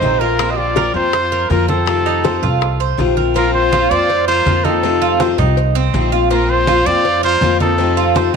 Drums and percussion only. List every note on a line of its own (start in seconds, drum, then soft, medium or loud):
0.02 high bongo soft
0.02 low bongo medium
0.02 high conga medium
0.21 high bongo soft
0.39 high bongo medium
0.39 high conga soft
0.58 high bongo soft
0.58 high conga soft
0.76 high bongo medium
0.76 high conga medium
0.95 high bongo soft
1.13 high bongo medium
1.13 high conga soft
1.32 high conga soft
1.50 high bongo soft
1.50 low bongo medium
1.50 high conga medium
1.69 high bongo soft
1.69 high conga medium
1.87 high bongo medium
1.87 high conga soft
2.06 high bongo soft
2.06 high conga soft
2.25 high bongo medium
2.25 high conga loud
2.43 high bongo soft
2.43 high conga soft
2.43 low conga medium
2.62 high bongo medium
2.62 high conga soft
2.81 high conga soft
2.99 high bongo soft
2.99 low bongo medium
2.99 high conga medium
3.17 high bongo soft
3.17 high conga medium
3.36 cowbell loud
3.36 high conga soft
3.55 high conga soft
3.73 cowbell medium
3.73 high conga loud
4.09 cowbell loud
4.09 high conga soft
4.28 high conga soft
4.46 cowbell medium
4.46 high conga loud
4.65 high conga medium
4.83 cowbell loud
4.83 high conga soft
5.01 high conga soft
5.20 cowbell medium
5.20 high conga loud
5.39 high conga soft
5.39 low conga medium
5.57 cowbell loud
5.57 high conga soft
5.75 high conga soft
5.94 cowbell medium
5.94 high conga medium
6.31 cowbell loud
6.31 high conga soft
6.49 high conga soft
6.67 cowbell medium
6.67 high conga loud
7.05 cowbell loud
7.05 high conga soft
7.23 high conga soft
7.42 cowbell medium
7.42 high conga loud
7.61 high conga medium
7.79 cowbell loud
7.79 high conga soft
7.98 high conga soft
8.16 cowbell medium
8.16 high conga loud